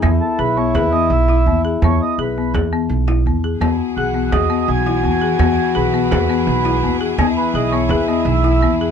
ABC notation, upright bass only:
X:1
M:5/4
L:1/8
Q:1/4=168
K:E
V:1 name="Upright bass" clef=bass
E,, z B,,,2 E,,2 B,,,2 E,,2 | E,, z B,,,2 E,,2 B,,,2 E,,2 | E,, z B,,,2 E,,2 B,,,2 E,,2 | E,, z B,,,2 E,,2 B,,,2 E,,2 |
E,, z B,,,2 E,,2 B,,,2 E,,2 |]